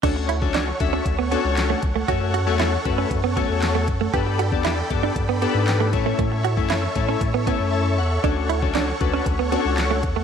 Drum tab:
CC |x---------------|----------------|----------------|----------------|
HH |x-x-x-x-x-x-x-x-|x-x-x-x-x-x-x-x-|x-x-x-x-x-x-x-x-|x-x-x-x-x-x-----|
CP |----x-------x---|----x-------x---|----x-------x---|----x-----------|
SD |----o-------o---|----o-------o---|----o-------o---|----o-----------|
BD |o--o--o-o-----o-|o-----o-o-o---o-|o--o--o-o-----o-|o--o--o-o-o-----|

CC |----------------|
HH |x-x-x-x-x-x-x-x-|
CP |----x-------x---|
SD |----o-------o---|
BD |o--o--o-o-----o-|